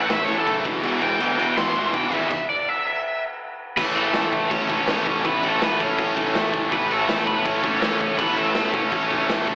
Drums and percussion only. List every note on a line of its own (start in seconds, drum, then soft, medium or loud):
0.10 snare loud
0.10 crash medium
0.28 crash medium
0.47 kick medium
0.47 crash medium
0.65 kick loud
0.65 crash medium
0.83 crash medium
1.01 crash medium
1.20 crash medium
1.39 crash medium
1.57 snare loud
1.57 crash medium
1.75 crash medium
1.94 kick medium
1.94 crash medium
2.12 crash medium
2.30 kick loud
2.30 crash medium
3.77 kick loud
3.77 crash loud
3.77 crash medium
3.95 crash medium
4.14 snare loud
4.14 crash medium
4.33 kick medium
4.33 crash medium
4.51 kick loud
4.51 crash medium
4.69 kick medium
4.69 crash medium
4.88 snare loud
4.88 crash medium
5.06 kick medium
5.06 crash medium
5.25 kick loud
5.25 crash medium
5.43 crash medium
5.62 snare loud
5.62 crash medium
5.80 kick loud
5.80 crash medium
5.99 kick loud
5.99 crash loud
6.17 kick medium
6.17 crash medium
6.35 snare loud
6.35 crash medium
6.54 kick loud
6.54 crash medium
6.72 kick loud
6.72 crash medium
6.91 crash medium
7.09 snare loud
7.09 crash medium
7.27 kick loud
7.27 crash medium
7.45 kick loud
7.45 crash medium
7.63 kick loud
7.63 crash medium
7.82 snare loud
7.82 crash medium
8.01 kick medium
8.01 crash medium
8.19 kick loud
8.19 crash loud
8.37 crash medium
8.55 snare loud
8.55 crash medium
8.74 kick medium
8.74 crash medium
8.92 kick loud
8.92 crash medium
9.10 kick loud
9.10 crash medium
9.29 snare loud
9.29 crash medium
9.47 kick medium
9.47 crash medium